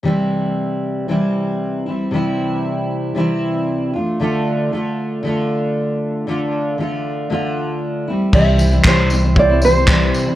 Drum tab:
CC |--------|--------|--------|--------|
TB |--------|--------|--------|--------|
CP |--------|--------|--------|--------|
BD |--------|--------|--------|--------|

CC |x-------|
TB |-x-x-x-x|
CP |--x---x-|
BD |o-o-o-o-|